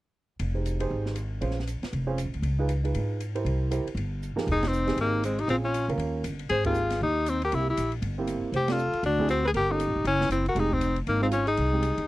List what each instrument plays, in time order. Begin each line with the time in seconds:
0.39 upright bass F1, ride
0.54 grand piano D#4 G4 G#4 C5
0.66 hi-hat pedal, ride
0.80 grand piano D#4 G4 G#4 C5, ride
0.91 upright bass G#1
1.06 snare
1.16 hi-hat pedal, ride
1.41 upright bass A#1, grand piano C#4 F4 G#4 C5, ride
1.51 snare
1.59 snare
1.67 hi-hat pedal, ride
1.82 muted upright bass stroke, snare, ride
1.93 upright bass F1, ride
2.07 grand piano C#4 F4 G#4 C5
2.18 hi-hat pedal, ride
2.25 upright bass A#1
2.34 upright bass D2, ride
2.42 upright bass C#2, ride
2.59 grand piano D#4 F4 G#4 B4
2.69 hi-hat pedal, ride
2.84 grand piano D#4 F4 G#4 B4, ride
2.94 upright bass G#2, ride
3.20 hi-hat pedal, ride
3.35 grand piano E4 G4 A#4 C5, ride
3.45 upright bass C2, ride
3.71 grand piano E4 G4 A#4 C5, hi-hat pedal, ride
3.85 muted upright bass stroke, ride
3.95 upright bass G1, ride
4.22 hi-hat pedal
4.36 grand piano F3 D#4 G4 G#4 A#4, muted upright bass stroke, snare
4.47 upright bass F1, kick, ride
4.52 tenor saxophone D#4, alto saxophone G#4
4.63 alto saxophone D#4, snare, ride
4.67 tenor saxophone C4
4.72 hi-hat pedal
4.87 grand piano C4 D#4 G4 G#4, snare, ride
4.96 upright bass G#1, alto saxophone D#4, ride
5.01 tenor saxophone A#3
5.23 tenor saxophone G#3, alto saxophone C4, hi-hat pedal, ride
5.39 tenor saxophone D#4, alto saxophone G4, ride
5.48 upright bass A#1, grand piano C4 C#4 F4 G#4, tenor saxophone C4, alto saxophone F4, ride
5.64 tenor saxophone C#4, alto saxophone F4
5.74 hi-hat pedal, ride
5.88 upright bass C#2, grand piano A#3 C#4 F4 A#4, ride
5.98 upright bass D#2, ride
6.24 upright bass G1, hi-hat pedal, ride
6.39 ride
6.49 upright bass G#1, tenor saxophone G#4, alto saxophone C5, ride
6.64 grand piano A#3 C4 D#4 G4, tenor saxophone F4, alto saxophone G#4, kick, ride
6.74 hi-hat pedal
6.90 snare, ride
7.01 upright bass D#2, tenor saxophone D#4, alto saxophone G4
7.26 tenor saxophone C4, alto saxophone D#4, hi-hat pedal, ride
7.42 tenor saxophone G4, alto saxophone A#4, ride
7.52 upright bass C2, grand piano A#3 C4 E4 G4, tenor saxophone E4, alto saxophone G4, ride
7.69 tenor saxophone E4, alto saxophone G4
7.77 upright bass A#1, hi-hat pedal, ride
7.92 ride
8.02 upright bass G1, ride
8.18 grand piano A#3 C4 E4 G4
8.27 hi-hat pedal, ride
8.42 muted upright bass stroke
8.52 upright bass F1, alto saxophone C5, ride
8.56 tenor saxophone G4
8.68 grand piano A3 C4 D4 G4, alto saxophone A4, snare, ride
8.72 tenor saxophone F4
8.78 hi-hat pedal
8.93 muted upright bass stroke, ride
9.03 upright bass D2, tenor saxophone D4, alto saxophone F#4, ride
9.19 grand piano A3 C4 E4 G#4, kick
9.29 tenor saxophone C4, alto saxophone F#4, hi-hat pedal, ride
9.45 tenor saxophone G#4, alto saxophone B4
9.54 upright bass G1, tenor saxophone G4, alto saxophone A#4, ride
9.69 grand piano A#3 C#4 F4 A4, tenor saxophone D#4, alto saxophone G4
9.80 hi-hat pedal, ride
9.88 upright bass A#1
9.96 upright bass G1
10.04 upright bass F#1, tenor saxophone C#4, alto saxophone E4, ride
10.21 snare
10.29 upright bass F#1, tenor saxophone C4, alto saxophone E4, hi-hat pedal, ride
10.46 tenor saxophone F#4, alto saxophone A#4, ride
10.55 upright bass F1, grand piano G#3 C4 D#4 G4, alto saxophone G#4, ride
10.60 tenor saxophone D#4
10.72 tenor saxophone C4, alto saxophone D#4, kick
10.81 hi-hat pedal, ride
10.96 ride
11.07 upright bass G#1, tenor saxophone A#3, alto saxophone D#4, ride
11.21 grand piano G#3 C4 D#4 F4, tenor saxophone C4, alto saxophone D#4
11.31 tenor saxophone C#4, alto saxophone F4, hi-hat pedal, ride
11.47 tenor saxophone D#4, alto saxophone G#4, ride
11.57 upright bass C2, ride
11.73 grand piano G#3 C4 D#4 G4
11.82 hi-hat pedal, ride
11.97 upright bass D#2, ride